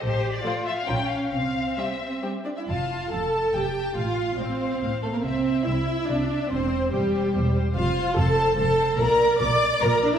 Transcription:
<<
  \new Staff \with { instrumentName = "Violin section" } { \time 3/4 \key f \major \tempo 4 = 142 c''8. d''8. e''16 f''16 g''8 f''8 | f''4 e''4 r4 | a''8 a''8 a''8 a''8 a''8 a''8 | f''8 f''8 f''8 f''8 f''8 f''8 |
e''8 e''8 e''8 e''8 e''8 e''8 | c''8 c''8 c''8 c''8 c''8 c''8 | c''8 c''8 c''8 c''8 c''8 c''8 | d''8 d''8 d''8 d''8 d''8 d''8 | }
  \new Staff \with { instrumentName = "Violin section" } { \time 3/4 \key f \major r4 <f' c''>4 <f' bes'>4 | r4 <c' g'>4 <c' g'>8 d''16 e''16 | f''4 a''4 g''4 | f''4 c''4. a'16 bes'16 |
c''4 e''4 d''4 | c''4 g'4. r8 | f''4 a''4 a''4 | bes''4 d'''4 bes''8 d''16 e''16 | }
  \new Staff \with { instrumentName = "Viola section" } { \time 3/4 \key f \major r4 <f a>4 <f des'>4 | r4 <g c'>4 <g c'>8 d'16 e'16 | f'4 a'4 g'4 | f'4 c'4. a16 bes16 |
c'4 e'4 d'4 | c'4 g4. r8 | f'4 a'4 a'4 | bes'4 d''4 bes'8 d'16 e'16 | }
  \new Staff \with { instrumentName = "Cello section" } { \clef bass \time 3/4 \key f \major g'4 f'4 des'4 | c'2~ c'8 r8 | f,4 f,4 f,4 | a,4 a,4 a,4 |
c4 c4 c4 | e,4 e,4 e,4 | f,4 f,4 f,4 | bes,4 bes,4 bes,4 | }
  \new Staff \with { instrumentName = "Double bass section" } { \clef bass \time 3/4 \key f \major a,,4 r4 bes,,4 | c,4 r2 | f,,4 f,,4 f,,4 | a,,4 a,,4 a,,4 |
c,4 c,4 c,4 | e,,4 e,,4 e,,4 | f,,4 f,,4 f,,4 | bes,,4 bes,,4 bes,,4 | }
>>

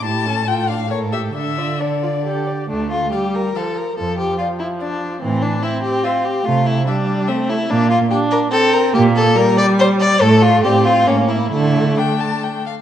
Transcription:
<<
  \new Staff \with { instrumentName = "Violin" } { \time 3/4 \key d \minor \tempo 4 = 141 a''4 g''8 f''8 cis''8 e''8 | e''4 d''4. r8 | r4 f''4 f''4 | r4 d''4 d''4 |
r4 e''4 e''4 | r4 e''4 e''4 | r4 g''4 g''4 | r4 d''4 d''4 |
cis''4 d''4 g''4 | r4 g''8 a''8 g''8 f''8 | }
  \new Staff \with { instrumentName = "Violin" } { \time 3/4 \key d \minor g'8 a'8 a'8 f'8 bes'8 a'8 | a'8 d''8 a'8 d''8 a'8 d''8 | d'8 f'8 g'8 bes'8 a'8 bes'8 | a'8 g'8 f'8 e'8 d'4 |
c'8 d'8 e'8 g'8 f'8 g'8 | f'8 e'8 d'4 c'8 e'8 | d'8 f'8 g'8 bes'8 a'8 bes'8 | g'8 a'8 bes'8 d''8 c''8 d''8 |
a'8 f'8 g'8 f'8 cis'8 e'8 | e'4 d'4. r8 | }
  \new Staff \with { instrumentName = "Viola" } { \time 3/4 \key d \minor e'8 cis'8 f'8 d'8 a'8 g'8 | d'8 f'8 d'8 f'8 g'4 | a4 g4 f4 | f2. |
e4 c'2 | a4 g4 a4 | bes4 d'4 c'4 | bes4 g2 |
a4 c'4 bes4 | a2~ a8 r8 | }
  \new Staff \with { instrumentName = "Cello" } { \clef bass \time 3/4 \key d \minor a,2. | d2~ d8 r8 | d,4 r2 | f,4 r2 |
a,4 r2 | c4 r2 | bes,4 r2 | bes,4 r2 |
a,4 a,4 a,4 | d4 r2 | }
>>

